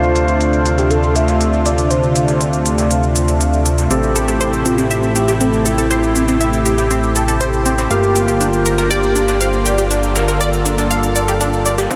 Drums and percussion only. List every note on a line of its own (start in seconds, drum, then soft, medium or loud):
0.03 shaker soft
0.16 closed hi-hat medium
0.16 shaker medium
0.28 closed hi-hat soft
0.28 shaker soft
0.41 closed hi-hat medium
0.41 shaker medium
0.41 shaker soft
0.53 closed hi-hat soft
0.53 shaker soft
0.66 closed hi-hat medium
0.66 shaker medium
0.78 snare soft
0.78 closed hi-hat soft
0.78 shaker soft
0.91 closed hi-hat medium
0.91 shaker medium
0.91 shaker soft
1.03 shaker soft
1.16 closed hi-hat medium
1.16 shaker medium
1.28 snare soft
1.28 closed hi-hat medium
1.28 shaker soft
1.41 closed hi-hat medium
1.41 shaker medium
1.41 shaker soft
1.53 shaker soft
1.66 closed hi-hat medium
1.66 shaker medium
1.78 closed hi-hat soft
1.78 shaker soft
1.91 closed hi-hat medium
1.91 shaker medium
1.91 shaker soft
2.03 shaker soft
2.16 closed hi-hat medium
2.16 shaker medium
2.28 snare soft
2.28 closed hi-hat soft
2.28 shaker soft
2.41 closed hi-hat medium
2.41 shaker medium
2.41 shaker soft
2.53 closed hi-hat soft
2.53 shaker soft
2.66 closed hi-hat medium
2.66 shaker medium
2.78 snare medium
2.78 closed hi-hat soft
2.78 shaker soft
2.91 closed hi-hat medium
2.91 shaker medium
2.91 shaker soft
3.03 shaker soft
3.16 closed hi-hat medium
3.16 shaker medium
3.28 closed hi-hat soft
3.28 shaker soft
3.41 closed hi-hat medium
3.41 shaker medium
3.41 shaker soft
3.53 shaker soft
3.66 closed hi-hat medium
3.66 shaker medium
3.78 snare soft
3.78 closed hi-hat soft
3.78 shaker soft
3.91 closed hi-hat medium
3.91 shaker medium
3.91 shaker soft
4.03 shaker soft
4.16 closed hi-hat medium
4.16 shaker medium
4.28 closed hi-hat soft
4.28 shaker soft
4.41 closed hi-hat medium
4.41 shaker soft
4.53 closed hi-hat soft
4.53 shaker soft
4.66 closed hi-hat medium
4.66 shaker medium
4.78 snare soft
4.78 closed hi-hat soft
4.78 shaker soft
4.91 closed hi-hat medium
4.91 shaker medium
4.91 shaker soft
5.03 shaker soft
5.16 closed hi-hat medium
5.16 shaker medium
5.28 snare soft
5.28 closed hi-hat soft
5.28 shaker soft
5.41 closed hi-hat medium
5.41 shaker medium
5.41 shaker soft
5.53 shaker soft
5.66 closed hi-hat medium
5.66 shaker medium
5.78 closed hi-hat soft
5.78 shaker soft
5.91 closed hi-hat medium
5.91 shaker medium
5.91 shaker soft
6.03 shaker soft
6.16 closed hi-hat medium
6.16 shaker medium
6.28 snare soft
6.28 closed hi-hat soft
6.28 shaker soft
6.41 closed hi-hat medium
6.41 shaker soft
6.53 closed hi-hat soft
6.53 shaker soft
6.66 closed hi-hat medium
6.66 shaker medium
6.78 snare soft
6.78 closed hi-hat soft
6.78 shaker soft
6.91 closed hi-hat medium
6.91 shaker medium
6.91 shaker soft
7.03 shaker soft
7.16 closed hi-hat medium
7.16 shaker medium
7.28 closed hi-hat soft
7.28 shaker soft
7.41 closed hi-hat medium
7.41 shaker medium
7.41 shaker soft
7.53 shaker soft
7.66 closed hi-hat medium
7.66 shaker medium
7.78 snare soft
7.78 closed hi-hat soft
7.78 shaker soft
7.91 closed hi-hat medium
7.91 shaker medium
7.91 shaker soft
8.03 shaker soft
8.16 closed hi-hat medium
8.16 shaker medium
8.28 closed hi-hat soft
8.28 shaker soft
8.41 closed hi-hat medium
8.41 shaker medium
8.41 shaker soft
8.53 closed hi-hat soft
8.53 shaker soft
8.66 closed hi-hat medium
8.66 shaker medium
8.78 snare medium
8.78 closed hi-hat soft
8.78 shaker soft
8.91 closed hi-hat medium
8.91 shaker medium
8.91 shaker soft
9.03 shaker soft
9.16 closed hi-hat medium
9.16 shaker medium
9.28 snare soft
9.28 closed hi-hat medium
9.28 shaker soft
9.41 closed hi-hat medium
9.41 shaker medium
9.41 shaker soft
9.53 shaker soft
9.66 closed hi-hat medium
9.66 shaker medium
9.78 closed hi-hat medium
9.78 shaker soft
9.91 closed hi-hat medium
9.91 shaker medium
9.91 shaker soft
10.03 closed hi-hat soft
10.03 shaker soft
10.16 snare loud
10.16 closed hi-hat medium
10.16 shaker medium
10.28 snare soft
10.28 closed hi-hat soft
10.28 shaker soft
10.41 closed hi-hat medium
10.41 shaker medium
10.41 shaker soft
10.53 closed hi-hat soft
10.53 shaker soft
10.66 closed hi-hat medium
10.66 shaker medium
10.78 snare soft
10.78 closed hi-hat medium
10.78 shaker soft
10.91 closed hi-hat medium
10.91 shaker soft
10.91 shaker medium
11.03 closed hi-hat soft
11.03 shaker soft
11.16 closed hi-hat medium
11.16 shaker medium
11.28 closed hi-hat soft
11.28 closed hi-hat medium
11.28 shaker soft
11.41 closed hi-hat medium
11.41 shaker medium
11.41 shaker soft
11.53 shaker soft
11.66 closed hi-hat medium
11.66 shaker medium
11.78 snare soft
11.78 closed hi-hat medium
11.78 shaker soft
11.91 kick loud
11.91 closed hi-hat medium